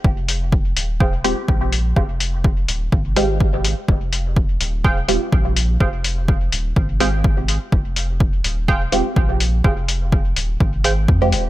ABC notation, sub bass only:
X:1
M:4/4
L:1/8
Q:"Swing 16ths" 1/4=125
K:Fm
V:1 name="Sub bass" clef=bass
F,,,3 E,,,2 z B,,,2 | F,,,3 E,,, A,,,3 z | F,,,3 E,,,2 z B,,,2 | F,,,3 E,,, A,,,3 z |
F,,,3 E,,,2 z B,,,2 | F,,,3 E,,, A,,,2 F,, E,,, |]